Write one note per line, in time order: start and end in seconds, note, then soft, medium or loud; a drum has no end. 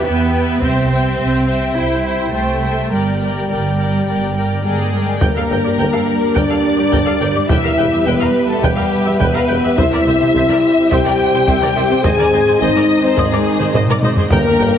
0.00 2.86 G4 medium
0.00 0.44 B4 medium
0.05 0.55 E2 medium
0.05 0.62 B3 medium
0.05 0.33 B4 soft
0.05 0.34 E5 medium
0.05 0.32 G5 soft
0.33 0.61 B4 soft
0.33 0.61 E5 soft
0.33 0.60 G5 soft
0.61 1.12 C2 medium
0.61 1.76 C4 medium
0.61 0.90 C5 medium
0.61 2.86 E5 medium
0.61 0.90 E5 soft
0.61 0.89 G5 soft
0.61 taiko soft
0.91 1.17 C5 soft
0.91 1.18 E5 soft
0.91 1.18 G5 soft
1.18 1.69 C2 medium
1.18 1.46 C5 soft
1.18 1.46 E5 soft
1.18 1.47 G5 soft
1.47 1.74 C5 soft
1.47 1.75 E5 soft
1.47 1.76 G5 soft
1.75 2.26 C2 soft
1.75 2.33 E4 medium
1.75 2.03 C5 soft
1.75 2.04 E5 soft
1.75 2.05 G5 soft
2.05 2.31 C5 soft
2.05 2.33 E5 soft
2.05 2.33 G5 soft
2.33 2.84 C2 soft
2.33 2.90 A3 medium
2.33 2.61 C5 soft
2.33 2.62 E5 soft
2.33 2.62 G5 soft
2.62 2.90 C5 soft
2.62 2.92 E5 soft
2.62 2.92 G5 soft
2.91 3.42 G1 soft
2.91 4.93 G3 soft
2.91 4.60 G4 soft
2.91 3.19 A#4 soft
2.91 4.60 D5 soft
2.91 3.20 D5 soft
2.91 3.20 G5 soft
3.20 3.48 A#4 soft
3.20 3.49 D5 soft
3.20 3.48 G5 soft
3.49 4.00 G1 soft
3.49 3.76 A#4 soft
3.49 3.78 D5 soft
3.49 3.77 G5 soft
3.78 4.05 A#4 soft
3.78 4.07 D5 soft
3.78 4.06 G5 soft
4.06 4.57 G1 soft
4.06 4.35 A#4 soft
4.06 4.35 D5 soft
4.06 4.35 G5 soft
4.36 4.64 A#4 soft
4.36 4.64 D5 soft
4.36 4.63 G5 soft
4.63 5.15 G1 soft
4.63 5.17 G#3 medium
4.63 5.18 G#4 soft
4.63 4.92 A#4 soft
4.63 4.93 D5 soft
4.63 4.92 G5 soft
4.93 5.21 A#4 soft
4.93 5.22 D5 soft
4.93 5.22 G5 soft
5.21 5.27 G1 medium
5.21 5.28 G1 medium
5.21 5.27 G2 medium
5.21 9.74 G3 medium
5.21 9.75 G3 medium
5.21 6.36 A#3 medium
5.21 7.46 D4 medium
5.21 9.74 G4 medium
5.21 7.45 A#4 medium
5.21 5.28 A#4 soft
5.21 6.34 A#4 medium
5.21 6.36 A#4 medium
5.21 7.46 D5 medium
5.21 5.27 G5 soft
5.21 taiko medium
5.36 5.42 G2 soft
5.36 5.42 A4 soft
5.36 5.42 F5 soft
5.50 5.56 G1 soft
5.50 5.56 G2 soft
5.50 5.56 A#4 soft
5.50 5.57 G5 soft
5.64 5.70 G2 soft
5.64 5.71 G4 soft
5.64 5.71 D5 soft
5.79 5.85 G1 medium
5.79 5.85 G2 medium
5.79 5.85 A#4 medium
5.79 5.85 G5 medium
5.93 6.00 G2 soft
5.93 5.99 A4 soft
5.93 5.99 F5 soft
6.35 6.42 G1 medium
6.35 6.42 G2 medium
6.35 7.32 D4 medium
6.35 6.41 A#4 medium
6.35 7.50 D5 medium
6.35 7.51 D5 medium
6.35 6.41 G5 medium
6.35 taiko medium
6.49 6.56 G2 soft
6.49 6.55 A4 soft
6.49 6.55 F5 soft
6.77 6.85 G2 soft
6.77 6.84 G4 soft
6.77 6.83 D5 soft
6.91 6.98 G1 medium
6.91 6.99 G1 medium
6.91 6.99 G2 medium
6.91 6.98 A#4 medium
6.91 6.97 G5 medium
6.91 taiko medium
7.06 7.13 G2 soft
7.06 7.12 A4 soft
7.06 7.12 F5 soft
7.21 7.27 G1 soft
7.21 7.27 G2 soft
7.21 7.27 A#4 soft
7.21 7.27 G5 soft
7.35 7.41 G2 soft
7.35 7.41 G4 soft
7.35 7.41 D5 soft
7.49 7.55 E1 medium
7.49 7.56 E1 medium
7.49 7.55 E2 medium
7.49 9.75 B3 medium
7.49 8.05 E4 medium
7.49 7.55 B4 medium
7.49 9.79 B4 medium
7.49 12.05 E5 medium
7.49 8.06 E5 medium
7.49 7.55 G5 medium
7.49 taiko medium
7.64 7.70 E2 soft
7.64 7.70 A#4 soft
7.64 7.70 F5 soft
7.78 7.83 E1 soft
7.78 7.84 E1 soft
7.78 7.84 E2 soft
7.78 7.84 B4 soft
7.78 7.83 G5 soft
7.92 7.98 E2 soft
7.92 7.98 G4 soft
7.92 7.98 E5 soft
8.06 8.12 E1 medium
8.06 8.13 E1 medium
8.06 8.12 E2 medium
8.06 8.49 B3 medium
8.06 8.12 B4 medium
8.06 8.49 B4 medium
8.06 8.50 B4 medium
8.06 8.12 G5 medium
8.20 8.27 E2 soft
8.20 8.26 A#4 soft
8.20 8.26 F5 soft
8.49 8.64 A3 medium
8.49 8.63 A4 medium
8.49 8.64 A4 medium
8.62 8.69 E1 medium
8.62 8.68 E2 medium
8.62 9.20 G3 medium
8.62 9.21 G4 medium
8.62 8.69 B4 medium
8.62 8.69 G5 medium
8.62 taiko medium
8.77 8.83 E2 soft
8.77 8.83 A#4 soft
8.77 8.83 F5 soft
9.06 9.12 E2 soft
9.06 9.12 G4 medium
9.06 9.12 E5 soft
9.19 9.26 E1 medium
9.19 9.26 E2 medium
9.19 9.79 B3 medium
9.19 9.77 B4 medium
9.19 9.26 B4 medium
9.19 9.77 B4 medium
9.19 9.26 G5 medium
9.19 taiko medium
9.34 9.40 E2 soft
9.34 9.40 A#4 soft
9.34 9.40 F5 medium
9.48 9.55 E1 soft
9.48 9.55 E2 soft
9.48 9.55 B4 soft
9.48 9.54 G5 soft
9.63 9.69 E2 soft
9.63 9.70 G4 medium
9.63 9.70 E5 soft
9.78 9.84 C2 medium
9.78 9.84 C3 medium
9.78 12.01 G3 medium
9.78 12.02 G3 medium
9.78 14.13 C4 medium
9.78 10.92 E4 medium
9.78 12.02 G4 medium
9.78 9.84 C5 medium
9.78 14.32 C5 medium
9.78 9.84 E5 medium
9.78 10.90 E5 medium
9.78 10.93 E5 medium
9.78 taiko medium
9.92 9.98 C3 soft
9.92 9.98 A#4 soft
9.92 9.99 D5 medium
10.07 10.12 C2 soft
10.07 10.13 C2 soft
10.07 10.12 C3 soft
10.07 10.13 C5 soft
10.07 10.13 E5 soft
10.20 10.27 C3 soft
10.20 10.26 G4 soft
10.20 10.26 C5 soft
10.35 10.41 C2 medium
10.35 10.41 C3 medium
10.35 10.41 C5 medium
10.35 10.41 E5 medium
10.49 10.55 C3 medium
10.49 10.56 A#4 medium
10.49 10.56 D5 soft
10.91 10.97 C2 medium
10.91 10.98 C2 medium
10.91 10.97 C3 medium
10.91 12.05 G4 medium
10.91 10.97 C5 medium
10.91 10.97 E5 medium
10.91 12.03 G5 medium
10.91 12.06 G5 medium
10.91 taiko medium
11.06 11.11 C3 medium
11.06 11.12 A#4 medium
11.06 11.12 D5 medium
11.34 11.40 C3 medium
11.34 11.40 G4 medium
11.34 11.40 C5 medium
11.48 11.54 C2 medium
11.48 11.53 C3 medium
11.48 11.54 C5 medium
11.48 11.54 E5 medium
11.48 taiko medium
11.61 11.67 C3 medium
11.61 11.68 A#4 medium
11.61 11.68 D5 medium
11.76 11.82 C2 medium
11.76 11.82 C3 medium
11.76 11.82 C5 medium
11.76 11.82 E5 medium
11.90 11.96 C3 medium
11.90 11.96 G4 medium
11.90 11.96 C5 medium
12.03 12.10 G#1 medium
12.03 12.11 G#1 medium
12.03 12.10 G#2 medium
12.03 14.13 D#3 medium
12.03 14.31 G#3 medium
12.03 14.31 D#4 medium
12.03 12.60 G#4 medium
12.03 12.10 C5 medium
12.03 12.10 D#5 medium
12.03 14.31 D#5 medium
12.03 12.61 G#5 medium
12.03 taiko loud
12.18 12.24 G#2 medium
12.18 12.25 A#4 medium
12.18 12.24 D5 medium
12.18 taiko mid soft
12.33 12.39 G#1 medium
12.33 12.39 G#2 medium
12.33 12.39 C5 soft
12.33 12.39 D#5 medium
12.47 12.53 G#2 medium
12.47 12.53 G#4 medium
12.47 12.54 C5 medium
12.60 12.67 G#1 medium
12.60 12.68 G#1 medium
12.60 12.67 G#2 medium
12.60 13.04 D#4 loud
12.60 12.68 C5 medium
12.60 13.04 D#5 medium
12.60 12.68 D#5 medium
12.60 13.04 D#5 medium
12.76 12.81 G#2 medium
12.76 12.82 A#4 medium
12.76 12.82 D5 medium
13.02 13.17 C4 medium
13.02 13.19 C5 medium
13.17 13.24 G#1 medium
13.17 13.25 G#1 medium
13.17 13.24 G#2 medium
13.17 13.73 G#3 medium
13.17 13.75 G#4 medium
13.17 13.76 G#4 medium
13.17 13.24 C5 medium
13.17 13.24 D#5 medium
13.17 taiko medium
13.32 13.38 G#2 medium
13.32 13.39 A#4 medium
13.32 13.39 D5 medium
13.60 13.66 G#2 medium
13.60 13.66 G#4 medium
13.60 13.66 C5 medium
13.60 taiko mid soft
13.74 13.80 G#1 medium
13.74 13.81 G#1 medium
13.74 13.80 G#2 medium
13.74 13.81 C5 medium
13.74 13.81 D#5 medium
13.74 taiko low-mid medium
13.88 13.95 G#2 medium
13.88 13.95 A#4 medium
13.88 13.95 D5 medium
13.88 taiko low-mid medium
14.02 14.08 G#1 medium
14.02 14.09 G#1 medium
14.02 14.09 G#2 medium
14.02 14.10 C5 medium
14.02 14.09 D#5 medium
14.02 taiko low-mid medium
14.16 14.23 G#2 medium
14.16 14.23 G#4 medium
14.16 14.24 C5 medium
14.16 taiko low medium
14.30 14.43 G1 medium
14.30 14.39 G1 medium
14.30 14.39 G2 medium
14.30 14.78 G2 medium
14.30 14.78 D3 medium
14.30 14.78 A#3 medium
14.30 14.78 A#3 loud
14.30 14.78 D4 medium
14.30 14.78 G4 medium
14.30 14.78 A#4 medium
14.30 14.40 A#4 medium
14.30 14.78 A#4 medium
14.30 14.78 G5 medium
14.30 14.39 G5 medium
14.30 taiko medium
14.45 taiko mid soft
14.59 14.68 G1 medium
14.59 14.71 G1 medium
14.59 14.67 G2 medium
14.59 14.68 A#4 medium
14.59 14.68 G5 medium